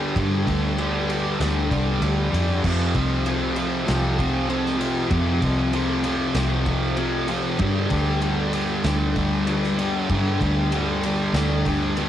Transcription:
0.00 0.12 D2 loud
0.00 0.15 G2 medium
0.00 0.16 D3 medium
0.00 0.17 G3 medium
0.16 0.45 G2 medium
0.16 0.77 G2 medium
0.16 0.47 D3 loud
0.16 0.45 G3 loud
0.16 kick loud
0.16 ride loud
0.47 1.36 D2 medium
0.47 0.78 D3 medium
0.47 0.79 G3 medium
0.47 kick medium
0.47 ride medium
0.78 1.38 G2 medium
0.78 1.11 D3 medium
0.78 1.08 G3 medium
0.78 ride loud
1.09 1.40 D3 medium
1.09 1.40 G3 medium
1.09 ride medium
1.39 1.69 D2 loud
1.39 2.01 G2 loud
1.39 1.72 D3 loud
1.39 1.69 G3 loud
1.39 snare loud
1.39 ride loud
1.70 1.99 C2 medium
1.70 2.02 D3 medium
1.70 2.03 G3 medium
1.70 kick medium
1.70 ride medium
2.01 2.29 D2 loud
2.01 2.62 G2 medium
2.01 2.34 D3 medium
2.01 2.31 G3 medium
2.01 ride loud
2.32 2.61 F2 medium
2.32 2.63 D3 medium
2.32 2.62 G3 medium
2.32 ride medium
2.64 2.93 F2 medium
2.64 3.25 F2 medium
2.64 2.97 C3 medium
2.64 2.95 F3 loud
2.64 kick loud
2.64 crash loud
2.94 3.84 C2 medium
2.94 3.26 C3 medium
2.94 3.28 F3 medium
2.94 kick medium
2.94 ride medium
3.26 3.85 F2 medium
3.26 3.58 C3 medium
3.26 3.56 F3 medium
3.26 ride loud
3.56 3.86 C3 medium
3.56 3.87 F3 medium
3.56 ride medium
3.86 5.08 C2 loud
3.86 4.46 F2 medium
3.86 4.20 C3 loud
3.86 4.17 F3 loud
3.86 snare loud
3.86 ride loud
4.18 4.48 C3 medium
4.18 4.50 F3 medium
4.18 kick medium
4.18 ride medium
4.48 5.10 F2 medium
4.48 4.79 C3 medium
4.48 4.77 F3 medium
4.48 ride loud
4.66 snare soft
4.78 5.10 C3 medium
4.78 5.12 F3 medium
4.78 ride medium
5.11 5.40 F2 loud
5.11 5.72 F2 medium
5.11 5.43 C3 medium
5.11 5.41 F3 loud
5.11 kick loud
5.11 ride loud
5.41 6.32 C2 medium
5.41 5.73 C3 medium
5.41 5.74 F3 medium
5.41 kick medium
5.41 ride medium
5.73 6.34 F2 medium
5.73 6.05 C3 medium
5.73 6.03 F3 medium
5.73 ride loud
6.04 6.35 C3 medium
6.04 6.36 F3 medium
6.04 ride medium
6.34 7.56 C2 loud
6.34 6.96 F2 loud
6.34 6.66 C3 loud
6.34 6.65 F3 loud
6.34 snare loud
6.34 ride loud
6.65 6.98 C3 medium
6.65 6.99 F3 medium
6.65 kick medium
6.65 ride medium
6.97 7.58 F2 medium
6.97 7.30 C3 medium
6.97 7.28 F3 medium
6.97 ride loud
7.28 7.60 C3 medium
7.28 7.61 F3 medium
7.28 ride medium
7.59 7.88 G2 loud
7.59 8.21 G2 medium
7.59 7.92 D3 medium
7.59 7.90 G3 loud
7.59 kick loud
7.59 ride loud
7.90 8.80 D2 medium
7.90 8.21 D3 medium
7.90 8.22 G3 medium
7.90 kick medium
7.90 ride medium
8.21 8.84 G2 medium
8.21 8.55 D3 medium
8.21 8.53 G3 loud
8.21 ride loud
8.53 8.85 D3 medium
8.53 8.86 G3 medium
8.53 ride medium
8.84 10.05 D2 loud
8.84 9.46 G2 loud
8.84 9.17 D3 loud
8.84 9.14 G3 loud
8.84 snare loud
8.84 ride loud
9.15 9.47 D3 medium
9.15 9.48 G3 medium
9.15 kick medium
9.15 ride medium
9.47 10.08 G2 medium
9.47 9.79 D3 medium
9.47 9.77 G3 medium
9.47 ride loud
9.64 snare soft
9.78 10.10 D3 medium
9.78 10.11 G3 medium
9.78 ride medium
10.09 10.71 G2 medium
10.09 10.38 G2 medium
10.09 10.43 D3 loud
10.09 10.40 G3 loud
10.09 kick loud
10.09 ride loud
10.40 11.30 D2 medium
10.40 10.73 D3 medium
10.40 10.74 G3 medium
10.40 kick medium
10.40 ride medium
10.72 11.34 G2 medium
10.72 11.06 D3 medium
10.72 11.04 G3 medium
10.72 ride loud
11.03 11.34 D3 medium
11.03 11.36 G3 medium
11.03 ride medium
11.34 12.09 D2 loud
11.34 11.97 G2 loud
11.34 11.68 D3 loud
11.34 snare loud
11.34 ride loud
11.38 11.65 G3 loud
11.65 11.97 D3 medium
11.65 11.99 G3 medium
11.65 kick medium
11.65 ride medium
11.97 12.09 G2 medium
11.97 12.09 D3 medium
11.97 12.09 G3 medium
11.97 ride loud

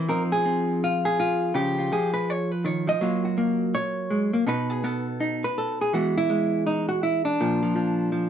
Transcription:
0.09 1.54 F3 medium
0.09 0.44 C4 medium
0.09 0.82 D#4 soft
0.09 0.22 A#4 medium
0.32 1.04 G#4 medium
0.45 1.53 C4 medium
0.84 1.18 F4 medium
1.05 1.55 G#4 loud
1.20 1.55 F4 medium
1.54 1.91 C#3 medium
1.54 1.91 F3 soft
1.54 1.78 F4 soft
1.54 2.13 G4 medium
1.79 2.99 F4 soft
1.92 2.86 F3 medium
1.92 2.51 G#4 medium
2.14 2.30 B4 medium
2.30 2.51 C#5 loud
2.51 2.66 B4 loud
2.65 2.87 D#3 medium
2.65 2.87 C#5 medium
2.87 3.00 F3 medium
2.87 3.74 D#5 loud
3.01 4.45 F#3 medium
3.01 3.36 A#3 soft
3.01 4.46 F4 soft
3.01 3.25 F#4 soft
3.25 4.45 F#4 soft
3.38 4.10 A#3 medium
3.75 4.47 C#5 loud
4.11 4.33 G#3 medium
4.33 4.46 A#3 medium
4.47 5.91 B2 medium
4.47 4.83 B3 soft
4.47 5.20 D#4 soft
4.47 4.70 F#4 soft
4.47 5.07 B4 medium
4.70 4.84 G#4 medium
4.84 5.91 B3 medium
4.84 5.56 A4 medium
5.20 5.91 D#4 soft
5.44 5.93 B4 loud
5.58 5.80 A4 medium
5.81 5.93 G#4 medium
5.93 7.37 E3 medium
5.93 6.29 G#3 soft
5.93 7.38 B3 soft
5.93 6.16 F#4 medium
6.18 6.66 E4 loud
6.30 7.37 G#3 medium
6.67 6.88 D#4 medium
6.89 7.02 F#4 medium
7.03 7.25 E4 medium
7.25 8.29 D4 medium
7.40 8.29 A#2 medium
7.40 7.61 F3 medium
7.63 7.75 F3 soft
7.76 8.11 F3 medium
8.12 8.29 F3 soft

